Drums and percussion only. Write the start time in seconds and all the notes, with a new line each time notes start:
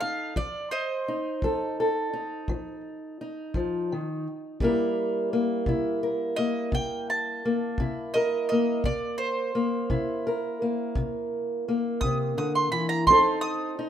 0.36 kick
1.42 kick
2.48 kick
3.54 kick
4.60 kick
5.66 kick
6.72 kick
7.78 kick
8.84 kick
9.90 kick
10.95 kick
12.01 kick
13.07 kick